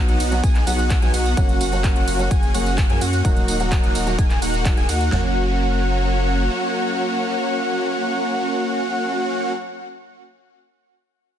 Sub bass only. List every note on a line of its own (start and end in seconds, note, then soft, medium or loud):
0.08 0.18 B1 loud
0.20 0.41 B1 loud
0.44 0.65 B1 medium
0.67 1.00 B1 loud
1.02 1.12 B1 loud
1.14 1.35 B1 loud
1.37 1.58 F#1 loud
1.61 1.94 F#1 loud
1.96 2.05 F#1 loud
2.08 2.29 F#1 loud
2.31 2.52 F#1 medium
2.54 2.87 F#1 loud
2.90 2.99 F#2 loud
3.01 3.22 F#2 loud
3.25 3.46 D#1 loud
3.48 3.81 D#1 loud
3.83 3.93 D#1 loud
3.95 4.16 D#1 loud
4.19 4.40 D#1 medium
4.42 4.75 D#1 loud
4.77 4.87 D#1 loud
4.89 5.10 D#2 loud
5.12 6.49 F#1 loud